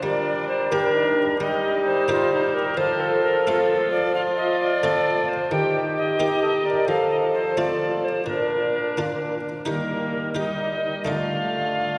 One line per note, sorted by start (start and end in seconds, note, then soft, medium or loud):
0.02 1.37 G3 medium
0.02 1.36 G3 medium
0.02 0.70 D4 medium
0.02 0.70 A#4 medium
0.02 0.48 D5 loud
0.48 0.73 C5 loud
0.71 1.21 A#3 medium
0.71 1.39 D4 medium
0.71 1.22 D4 medium
0.71 0.94 G4 medium
0.71 1.22 G4 medium
0.71 1.40 A#4 loud
0.95 1.19 D#4 medium
1.18 1.39 D4 medium
1.39 2.75 G3 medium
1.39 2.74 G3 medium
1.39 2.74 D#4 medium
1.39 2.07 G4 medium
1.39 1.85 D#5 loud
1.86 2.56 C5 loud
2.08 2.58 A#3 medium
2.08 2.58 D#4 medium
2.08 2.31 F4 loud
2.08 2.59 G4 medium
2.32 2.42 D#4 medium
2.54 2.77 G4 medium
2.54 2.79 A#4 loud
2.77 5.20 F3 medium
2.77 3.45 F4 medium
2.77 4.12 A4 medium
2.77 3.02 C5 loud
3.00 3.23 A4 loud
3.23 3.48 A#4 loud
3.46 3.96 A3 medium
3.46 3.96 C4 medium
3.46 4.13 F4 medium
3.46 3.91 A4 loud
3.46 3.97 A4 medium
3.91 4.14 D5 loud
4.14 4.82 F4 medium
4.14 5.49 F4 medium
4.14 4.20 F5 loud
4.37 4.59 D#5 loud
4.59 5.30 D5 loud
4.83 5.32 A3 medium
4.83 5.33 C4 medium
4.83 5.26 A4 loud
4.83 5.33 A4 medium
5.28 5.51 C5 loud
5.51 6.84 D#3 medium
5.51 6.16 G4 medium
5.51 6.86 G4 medium
5.51 5.77 G5 loud
5.97 6.67 D#5 loud
6.20 6.69 A#3 medium
6.20 6.69 D#4 medium
6.20 6.42 G4 medium
6.20 6.69 G4 medium
6.42 6.53 A4 medium
6.64 6.89 A#4 medium
6.64 6.88 D5 loud
6.88 8.23 F3 medium
6.88 7.56 A4 medium
6.88 8.23 A4 medium
6.88 7.10 F5 loud
7.10 7.16 D#5 medium
7.34 7.59 C5 loud
7.57 8.08 A3 medium
7.57 8.08 C4 medium
7.57 8.26 F4 medium
7.57 8.08 F4 medium
7.57 8.06 D5 loud
8.04 8.27 C5 medium
8.26 9.40 A#2 medium
8.26 9.42 A#2 medium
8.26 9.30 D4 medium
8.26 9.45 D4 medium
8.26 8.96 A#4 medium
8.97 9.48 A#3 soft
8.97 9.48 D4 medium
8.97 9.49 F4 medium
9.65 11.03 D#3 medium
9.65 10.34 G3 medium
9.65 10.34 A#3 medium
9.65 10.33 D#4 soft
9.65 10.35 G4 soft
9.65 10.34 A#4 medium
10.35 11.09 G3 medium
10.35 11.03 D#4 soft
10.35 11.06 D#4 medium
10.35 11.04 G4 medium
10.35 11.06 D#5 medium
11.05 11.98 D3 medium
11.05 11.98 A3 soft
11.05 11.98 A3 medium
11.05 11.98 D4 soft
11.05 11.98 F4 medium
11.05 11.98 F5 medium